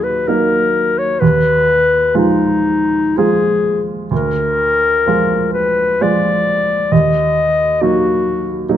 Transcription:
Already playing: D#2 F#3 A#3 D#4
0.03 B4
0.28 F#3 A#3 D#4 A#4
0.99 C#5
1.20 D#2 B4
2.14 F3 G#3 D#4 F4
3.17 F3 G#3 F4 G#4
4.11 D2 A#4
5.06 F3 G#3 F4
5.53 B4
6.01 F3 G#3 F4 D5
6.92 D#2 D#5
7.81 F#3 A#3 D#4 F#4
8.69 F#3 A#3 D#4

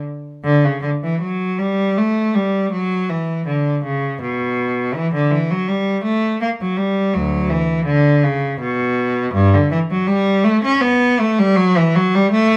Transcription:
0.44 D3
0.64 C#3
0.82 D3
1.03 E3
1.21 F#3
1.58 G3
1.98 A3
2.35 G3
2.72 F#3
3.09 E3
3.46 D3
3.84 C#3
4.21 B2
4.94 E3
5.14 D3
5.31 E3
5.51 F#3
5.68 G3
6.04 A3
6.41 A#3
6.61 F#3
6.77 G3
7.14 D2 F#3
7.50 E3
7.86 D3
8.24 C#3
8.60 B2
9.34 G2
9.54 D3
9.71 E3
9.91 F#3
10.07 G3
10.44 A3
10.64 C#4
10.81 B3
11.20 A3
11.39 G3
11.56 F#3
11.77 E3
11.95 F#3
12.14 G3
12.32 A3

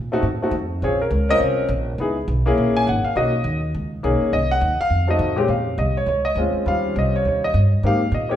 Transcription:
Already playing: A#2
0.12 A3 C4 D#4 F#4
0.23 A2
0.42 A3 C4 D#4 F#4
0.51 F2
0.82 A#1 C4 C#4 F4 G#4 C#5
1.02 A#4
1.11 C#2
1.29 C4 C#4 F4 A#4 D#5
1.40 C2
1.69 A#1
1.98 C#2 B3 D#4 E4 G#4
2.28 B1
2.46 A#3 C#4 E4 G#4
2.57 A#1
2.77 G#5
2.87 G#1 F#5
3.04 F5, muted upright bass stroke
3.15 B1 A#3 C#4 D#4 F#4 D#5
3.44 D#2
3.74 C#2
4.03 B1 A#3 C#4 D#4 G#4
4.21 muted upright bass stroke
4.33 C2 D#5
4.51 F#5
4.61 D#2
4.79 F5, muted upright bass stroke
4.90 F2
5.07 A3 C4 D#4 F#4 D#5
5.19 A2
5.36 A#2 G#3 C4 C#4 G4
5.48 F2 F5
5.78 C2 D#5
5.97 C#5
6.06 C#2 C#5
6.25 D#5
6.35 D2 G#3 C4 C#4 F4
6.53 muted upright bass stroke
6.66 D#2 G3 C4 C#4 F4 F5
6.96 C2 D#5
7.16 C#5
7.25 D#2 C#5
7.44 D#5
7.54 G2
7.83 G#2 A#3 C4 D#4 G4 F5
8.12 A#2 D#5
8.29 A#3 C4 D#4 G4 C#5

